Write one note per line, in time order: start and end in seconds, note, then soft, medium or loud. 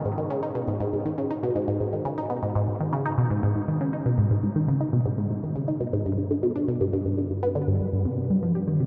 0.05 0.15 G#2 medium
0.18 0.30 D#3 medium
0.30 0.42 C#3 loud
0.43 0.49 D#4 medium
0.55 0.65 B2 loud
0.68 0.77 G#2 medium
0.80 0.90 G#2 loud
0.93 1.02 G#2 medium
1.06 1.17 D#3 medium
1.18 1.30 C#3 loud
1.31 1.36 D#4 medium
1.43 1.52 B2 loud
1.55 1.65 G#2 loud
1.68 1.77 G#2 loud
1.80 1.90 G#2 medium
1.93 2.05 D#3 medium
2.05 2.17 C#3 loud
2.18 2.23 D#4 medium
2.30 2.40 B2 loud
2.43 2.52 G#2 loud
2.55 2.65 G#2 loud
2.68 2.77 G#2 medium
2.80 2.92 D#3 medium
2.93 3.05 C#3 loud
3.06 3.11 D#4 medium
3.18 3.27 B2 loud
3.30 3.40 G#2 loud
3.43 3.52 G#2 loud
3.56 3.65 G#2 medium
3.68 3.80 D#3 medium
3.81 3.93 C#3 loud
3.93 3.99 D#4 medium
4.06 4.15 B2 loud
4.18 4.27 G#2 loud
4.31 4.40 G#2 loud
4.43 4.52 G#2 medium
4.56 4.67 D#3 medium
4.68 4.80 C#3 loud
4.81 4.86 D#4 medium
4.93 5.02 B2 loud
5.06 5.15 G#2 loud
5.18 5.27 G#2 loud
5.31 5.40 G#2 medium
5.43 5.55 D#3 medium
5.55 5.67 C#3 loud
5.68 5.74 D#4 medium
5.80 5.90 B2 loud
5.93 6.02 G#2 loud
6.06 6.15 G2 loud
6.18 6.27 G2 medium
6.31 6.42 D3 medium
6.43 6.55 B2 loud
6.56 6.61 D4 medium
6.68 6.77 B2 loud
6.81 6.90 G2 loud
6.93 7.02 G2 loud
7.05 7.15 G2 medium
7.18 7.30 D3 medium
7.30 7.36 G2 medium
7.43 7.52 B3 loud
7.55 7.67 D3 loud
7.68 7.79 G2 loud
7.80 7.86 G2 medium
7.93 8.02 G2 medium
8.05 8.15 C3 medium
8.18 8.27 C3 medium
8.30 8.42 G3 medium
8.43 8.55 F3 medium
8.55 8.61 G4 medium
8.68 8.77 D#3 medium
8.80 8.86 C3 loud